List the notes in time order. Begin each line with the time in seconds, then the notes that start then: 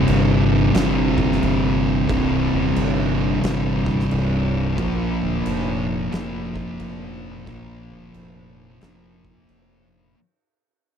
Already playing: C2 G2 C3
0.08 G1, crash
0.74 G1 C2 G2 C3, snare, crash
1.18 kick
1.32 snare
1.43 G1, crash
2.08 C1 C2 G2 C3, kick, crash
2.53 D#1
2.76 G1, crash
3.42 G1 C2 G2 C3, snare, crash
3.86 kick
4.00 snare
4.11 C1, crash
4.77 A#1 A#2 F3 A#3, kick, crash
5.22 D1
5.46 F1, crash
6.12 F1 A#2 F3 A#3, snare, crash
6.56 kick
6.80 F1, crash
7.47 A#1 A#2 F3 A#3, kick, crash
7.90 D1
8.14 F1, crash
8.81 F1 A#2 F3 A#3, snare, crash
9.25 kick
9.49 F1, crash